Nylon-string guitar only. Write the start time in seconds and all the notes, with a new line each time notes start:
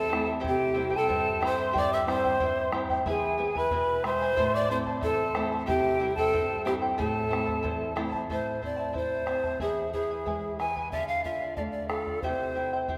Already playing: E2
0.12 A3 C4 E4
0.45 C3
0.76 G3 C4 E4
1.10 G2
1.41 G3 C4 E4
1.75 G2
2.06 G3 C4 E4
2.40 G2
2.72 G3 C4 E4
3.06 E3
3.39 B3 E4 G#4
3.71 B2
4.03 G#3 E4 G#4
4.38 A2
4.70 A3 C4 E4
5.02 E2
5.36 A3 C4 E4
5.69 C3
6.00 G3 C4 E4
6.33 G2
6.65 G3 C4 E4
6.99 A2
7.31 A3 C4 E4
7.64 E2
7.97 A3 C4 E4
8.30 A2
8.64 C4
8.95 E4
9.28 C4
9.62 E2
9.95 E3
10.26 G#3
10.60 E3
10.93 D3
11.25 F4
11.58 A3
11.90 F4
12.23 C3
12.57 E4
12.89 G4